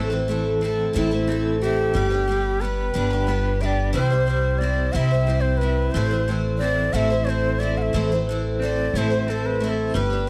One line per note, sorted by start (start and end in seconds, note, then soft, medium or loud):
0.00 0.91 A1 medium
0.00 0.11 A2 medium
0.00 0.12 E3 medium
0.00 0.12 A3 medium
0.00 0.11 C4 medium
0.00 0.61 C4 medium
0.00 0.10 E4 medium
0.00 0.93 E4 medium
0.00 0.12 A4 medium
0.10 0.27 A3 soft
0.10 0.28 C4 soft
0.10 0.28 E4 soft
0.10 0.27 A4 medium
0.28 1.94 E3 medium
0.28 0.60 A3 medium
0.28 0.61 C4 medium
0.28 0.63 E4 medium
0.28 0.63 A4 medium
0.61 0.94 A3 medium
0.61 0.94 C4 medium
0.61 0.94 E4 medium
0.61 0.93 A4 medium
0.65 0.95 A4 medium
0.93 1.91 A1 medium
0.93 1.11 A2 medium
0.93 1.11 E3 medium
0.93 1.12 A3 medium
0.93 1.11 C4 medium
0.93 1.57 E4 medium
0.93 1.11 E4 medium
0.93 1.10 A4 medium
1.11 1.26 A3 soft
1.11 1.28 C4 soft
1.11 1.28 E4 soft
1.11 1.28 A4 soft
1.27 1.60 A3 medium
1.27 1.62 C4 medium
1.27 1.62 E4 medium
1.32 1.63 A4 medium
1.61 1.93 A3 medium
1.61 1.94 C4 medium
1.61 1.95 E4 medium
1.61 2.62 G4 medium
1.61 1.96 A4 medium
1.94 2.91 G1 medium
1.94 2.11 G3 medium
1.94 2.11 D4 medium
1.94 2.11 G4 medium
1.94 2.09 B4 medium
2.10 2.28 G4 soft
2.10 2.27 B4 soft
2.14 2.28 D4 soft
2.28 2.60 G3 medium
2.28 2.61 D4 medium
2.28 2.62 G4 medium
2.32 2.63 B4 medium
2.61 2.93 G3 medium
2.61 3.27 B3 medium
2.61 2.93 D4 medium
2.61 2.94 G4 medium
2.61 3.63 B4 loud
2.61 2.95 B4 medium
2.94 3.91 G1 medium
2.94 3.11 G3 medium
2.94 3.11 D4 medium
2.94 3.11 G4 medium
2.94 3.09 B4 medium
3.10 3.27 D4 soft
3.10 3.27 G4 medium
3.10 3.27 B4 soft
3.27 3.59 G3 medium
3.27 4.01 B3 medium
3.27 3.60 D4 medium
3.27 3.62 G4 medium
3.27 3.62 B4 medium
3.60 3.93 G3 medium
3.60 3.94 D4 medium
3.60 3.94 G4 medium
3.60 3.95 B4 medium
3.60 3.66 E5 medium
3.65 3.94 D5 loud
3.93 4.90 C2 medium
3.93 4.10 C3 medium
3.93 4.10 E3 medium
3.93 4.11 G3 medium
3.93 4.11 C4 medium
3.93 4.11 E4 medium
3.93 4.60 C5 loud
3.93 4.09 C5 medium
4.10 4.26 G3 soft
4.10 4.26 C4 soft
4.10 4.28 E4 medium
4.10 4.27 C5 medium
4.27 4.59 G3 medium
4.27 4.61 C4 medium
4.27 4.62 E4 medium
4.27 4.62 C5 medium
4.58 4.93 G3 soft
4.58 4.93 C4 medium
4.58 4.94 D5 loud
4.63 4.94 E4 medium
4.63 4.94 C5 medium
4.92 5.90 C2 medium
4.92 5.10 C3 medium
4.92 5.10 E3 medium
4.92 5.11 G3 medium
4.92 5.11 C4 medium
4.92 5.12 E4 medium
4.92 5.10 C5 medium
4.92 5.42 E5 loud
4.92 4.97 F#5 medium
5.11 5.26 G3 soft
5.11 5.27 C4 soft
5.11 5.28 E4 soft
5.11 5.28 C5 soft
5.27 5.60 G3 medium
5.27 5.61 C4 medium
5.27 5.62 E4 medium
5.27 5.62 C5 medium
5.41 5.59 C5 medium
5.57 5.94 G3 medium
5.57 5.93 B4 medium
5.62 5.95 C4 medium
5.62 5.95 E4 medium
5.92 6.90 A1 medium
5.92 6.11 A2 medium
5.92 6.11 E3 medium
5.92 6.32 C5 medium
5.96 6.12 A3 medium
5.96 6.12 C4 medium
5.96 6.11 E4 medium
5.96 6.10 C5 medium
6.11 6.26 A3 soft
6.11 6.27 C4 soft
6.11 6.28 E4 soft
6.11 6.28 C5 medium
6.28 7.93 E3 medium
6.28 6.60 A3 medium
6.28 6.61 C4 medium
6.28 6.62 E4 medium
6.28 6.63 C5 medium
6.58 6.93 A3 soft
6.58 6.93 C4 medium
6.58 6.95 D5 loud
6.63 6.93 E4 medium
6.63 6.94 C5 medium
6.93 7.90 A1 medium
6.93 7.10 A2 medium
6.93 7.10 E3 medium
6.93 7.11 A3 medium
6.93 7.11 C4 medium
6.93 7.11 E4 medium
6.93 7.09 C5 medium
6.93 7.26 E5 loud
6.93 6.97 F#5 medium
7.10 7.25 A3 soft
7.10 7.27 C4 soft
7.10 7.28 E4 soft
7.10 7.27 C5 medium
7.25 7.59 A3 medium
7.25 7.60 C4 medium
7.25 7.31 C#5 medium
7.29 7.61 E4 medium
7.29 7.61 C5 medium
7.29 7.62 C5 medium
7.59 7.93 A3 medium
7.59 7.94 C4 medium
7.59 7.95 E4 medium
7.59 7.79 D5 medium
7.63 7.95 C5 medium
7.77 7.83 F#5 medium
7.82 8.11 E5 medium
7.93 8.90 A1 medium
7.93 8.10 A2 medium
7.93 8.11 E3 medium
7.93 8.11 A3 medium
7.93 8.11 C4 medium
7.93 8.11 E4 medium
7.93 8.11 C5 medium
8.12 8.28 A3 soft
8.12 8.29 C4 soft
8.12 8.28 E4 medium
8.12 8.28 C5 medium
8.27 9.94 E3 medium
8.27 8.61 A3 medium
8.27 8.62 C4 medium
8.32 8.63 E4 medium
8.32 8.63 C5 medium
8.62 8.95 A3 medium
8.62 8.95 C4 medium
8.62 8.96 E4 medium
8.62 8.96 C5 medium
8.62 8.99 D5 medium
8.94 9.90 A1 medium
8.94 9.11 A2 medium
8.94 9.12 E3 medium
8.94 9.12 A3 medium
8.94 9.12 C4 medium
8.94 9.10 E4 medium
8.94 9.31 C5 medium
8.98 9.09 C5 medium
9.10 9.27 A3 soft
9.10 9.28 C4 soft
9.10 9.28 E4 soft
9.10 9.27 C5 medium
9.28 9.59 A3 medium
9.28 9.61 C4 medium
9.28 9.62 E4 medium
9.28 9.47 A4 medium
9.28 9.62 C5 medium
9.46 9.64 B4 medium
9.60 9.94 A3 medium
9.60 9.94 C4 medium
9.60 9.95 E4 medium
9.60 9.70 B4 medium
9.60 9.95 C5 medium
9.69 9.96 A4 medium
9.94 10.29 G1 medium
9.94 10.10 G3 medium
9.94 10.11 D4 medium
9.94 10.11 G4 medium
9.94 10.29 B4 medium
9.94 10.09 B4 medium
10.10 10.27 D4 soft
10.10 10.28 G4 medium
10.10 10.27 B4 medium